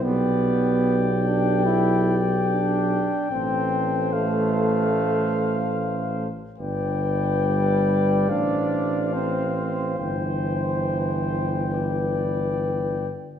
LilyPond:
<<
  \new Staff \with { instrumentName = "Trumpet" } { \time 4/4 \key g \mixolydian \tempo 4 = 72 g''1~ | g''4 f''2~ f''8 r8 | g''2 f''2 | g''2.~ g''8 r8 | }
  \new Staff \with { instrumentName = "Flugelhorn" } { \time 4/4 \key g \mixolydian d''1 | c''2.~ c''8 r8 | d''2. c''4~ | c''2 d''4. r8 | }
  \new Staff \with { instrumentName = "French horn" } { \time 4/4 \key g \mixolydian g'1 | a'2.~ a'8 r8 | b'2 c''2~ | c''2 b'4. r8 | }
  \new Staff \with { instrumentName = "Trombone" } { \time 4/4 \key g \mixolydian b4. d'8 e'8 r8 d'4 | c'4 a2~ a8 r8 | r4 g4 d'4 c'4 | e2.~ e8 r8 | }
  \new Staff \with { instrumentName = "Tuba" } { \clef bass \time 4/4 \key g \mixolydian b,,1 | a,,2.~ a,,8 r8 | g,,2 a,,2 | g,,2.~ g,,8 r8 | }
>>